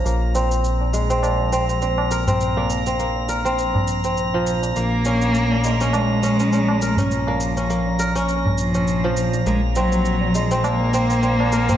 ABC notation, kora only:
X:1
M:4/4
L:1/16
Q:"Swing 16ths" 1/4=102
K:Abmix
V:1 name="Kora"
B,2 C4 A, C B, z C C C z B C- | C B, z C B, z B C4 C2 F, z2 | B,2 D4 A, D B, z D D D z B D- | D B, z D B, z B D4 D2 F, z2 |
B,2 C4 A, C B, z C C C z B C |]